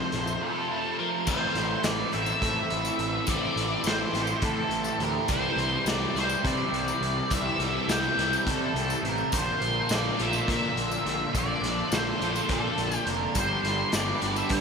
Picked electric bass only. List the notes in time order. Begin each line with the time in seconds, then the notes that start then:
0.13 A#1
1.27 A1
1.55 A1
1.84 A1
2.14 A1
2.41 A2
2.71 A1
2.99 A1
3.27 A1
3.56 A1
3.84 A1
4.13 A1
4.42 A2
4.70 A1
4.99 D2
5.29 C2
5.56 C2
5.85 C2
6.15 C2
6.44 C3
6.71 C2
7.01 C2
7.31 C2
7.59 C2
7.88 C2
8.17 C2
8.46 C3
8.74 C2
9.03 A1
9.33 A#1
9.61 A#1
9.91 A#1
10.20 A#1
10.48 A#2
10.76 A#1
11.05 A#1
11.34 A#1
11.62 A#1
11.92 A#1
12.21 A#1
12.49 A#2
12.78 A#1
13.06 F1
13.35 G1
13.63 G1
13.93 G1
14.22 G1
14.50 G2